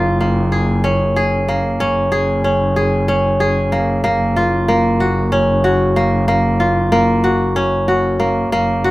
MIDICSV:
0, 0, Header, 1, 3, 480
1, 0, Start_track
1, 0, Key_signature, -6, "major"
1, 0, Tempo, 639659
1, 1357, Time_signature, 7, 3, 24, 8
1, 6685, End_track
2, 0, Start_track
2, 0, Title_t, "Kora"
2, 0, Program_c, 0, 46
2, 0, Note_on_c, 0, 58, 76
2, 0, Note_on_c, 0, 61, 64
2, 0, Note_on_c, 0, 65, 78
2, 151, Note_off_c, 0, 58, 0
2, 154, Note_on_c, 0, 58, 65
2, 253, Note_off_c, 0, 61, 0
2, 390, Note_on_c, 0, 68, 59
2, 629, Note_on_c, 0, 61, 76
2, 870, Note_off_c, 0, 68, 0
2, 873, Note_on_c, 0, 68, 71
2, 1047, Note_off_c, 0, 65, 0
2, 1111, Note_off_c, 0, 58, 0
2, 1114, Note_on_c, 0, 58, 60
2, 1349, Note_off_c, 0, 61, 0
2, 1352, Note_on_c, 0, 61, 81
2, 1585, Note_off_c, 0, 68, 0
2, 1588, Note_on_c, 0, 68, 75
2, 1830, Note_off_c, 0, 61, 0
2, 1833, Note_on_c, 0, 61, 69
2, 2070, Note_off_c, 0, 68, 0
2, 2073, Note_on_c, 0, 68, 64
2, 2310, Note_off_c, 0, 61, 0
2, 2313, Note_on_c, 0, 61, 74
2, 2550, Note_off_c, 0, 68, 0
2, 2553, Note_on_c, 0, 68, 76
2, 2562, Note_off_c, 0, 58, 0
2, 2792, Note_on_c, 0, 58, 66
2, 3027, Note_off_c, 0, 58, 0
2, 3030, Note_on_c, 0, 58, 86
2, 3275, Note_on_c, 0, 65, 73
2, 3512, Note_off_c, 0, 58, 0
2, 3515, Note_on_c, 0, 58, 78
2, 3576, Note_off_c, 0, 68, 0
2, 3618, Note_off_c, 0, 61, 0
2, 3754, Note_on_c, 0, 66, 65
2, 3799, Note_off_c, 0, 65, 0
2, 3992, Note_on_c, 0, 61, 78
2, 4230, Note_off_c, 0, 66, 0
2, 4233, Note_on_c, 0, 66, 70
2, 4471, Note_off_c, 0, 58, 0
2, 4474, Note_on_c, 0, 58, 73
2, 4709, Note_off_c, 0, 58, 0
2, 4712, Note_on_c, 0, 58, 85
2, 4952, Note_on_c, 0, 65, 71
2, 4997, Note_off_c, 0, 66, 0
2, 5189, Note_off_c, 0, 58, 0
2, 5192, Note_on_c, 0, 58, 79
2, 5297, Note_off_c, 0, 61, 0
2, 5431, Note_on_c, 0, 66, 73
2, 5476, Note_off_c, 0, 65, 0
2, 5673, Note_on_c, 0, 61, 78
2, 5910, Note_off_c, 0, 66, 0
2, 5913, Note_on_c, 0, 66, 67
2, 6147, Note_off_c, 0, 58, 0
2, 6150, Note_on_c, 0, 58, 65
2, 6393, Note_off_c, 0, 58, 0
2, 6396, Note_on_c, 0, 58, 79
2, 6633, Note_off_c, 0, 66, 0
2, 6636, Note_on_c, 0, 66, 78
2, 6685, Note_off_c, 0, 58, 0
2, 6685, Note_off_c, 0, 61, 0
2, 6685, Note_off_c, 0, 66, 0
2, 6685, End_track
3, 0, Start_track
3, 0, Title_t, "Double bass"
3, 0, Program_c, 1, 43
3, 0, Note_on_c, 1, 30, 88
3, 1354, Note_off_c, 1, 30, 0
3, 1354, Note_on_c, 1, 30, 78
3, 3035, Note_off_c, 1, 30, 0
3, 3035, Note_on_c, 1, 30, 83
3, 6363, Note_off_c, 1, 30, 0
3, 6396, Note_on_c, 1, 30, 81
3, 6685, Note_off_c, 1, 30, 0
3, 6685, End_track
0, 0, End_of_file